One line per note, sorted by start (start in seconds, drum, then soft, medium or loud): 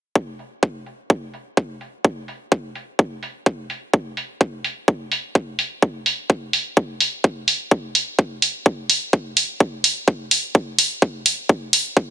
0.15 kick loud
0.39 open hi-hat medium
0.63 kick loud
0.86 open hi-hat medium
1.10 kick medium
1.34 open hi-hat medium
1.57 kick loud
1.81 open hi-hat medium
2.05 kick loud
2.28 open hi-hat medium
2.52 kick loud
2.75 open hi-hat loud
2.99 kick loud
3.23 open hi-hat medium
3.46 kick loud
3.70 open hi-hat loud
3.94 kick loud
4.17 open hi-hat medium
4.41 kick loud
4.64 open hi-hat medium
4.88 kick loud
5.12 open hi-hat loud
5.35 kick loud
5.59 open hi-hat loud
5.82 kick loud
6.06 open hi-hat loud
6.30 kick loud
6.53 open hi-hat loud
6.77 kick loud
7.00 open hi-hat loud
7.24 kick loud
7.48 open hi-hat loud
7.71 kick loud
7.95 open hi-hat medium
8.19 kick loud
8.42 open hi-hat medium
8.66 kick loud
8.90 open hi-hat loud
9.13 kick loud
9.37 open hi-hat loud
9.60 kick loud
9.84 open hi-hat medium
10.08 kick loud
10.31 open hi-hat medium
10.55 kick loud
10.79 open hi-hat medium
11.02 kick loud
11.26 open hi-hat medium
11.49 kick loud
11.73 open hi-hat medium
11.97 kick loud